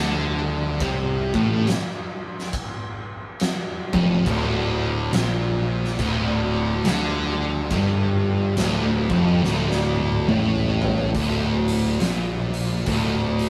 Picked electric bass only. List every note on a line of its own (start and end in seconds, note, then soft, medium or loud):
0.00 0.77 D2 loud
0.81 1.30 C2 loud
1.34 1.65 A1 loud
3.93 4.24 F1 loud
4.27 5.09 D1 loud
5.13 5.95 A#1 medium
5.99 6.81 D1 medium
6.84 7.66 D2 medium
7.71 8.53 G1 loud
8.57 9.06 D1 medium
9.10 9.40 F1 loud
9.44 10.25 D1 medium
10.29 11.11 A1 loud
11.15 11.97 D1 medium
12.01 12.83 A#1 medium
12.86 13.49 D1 medium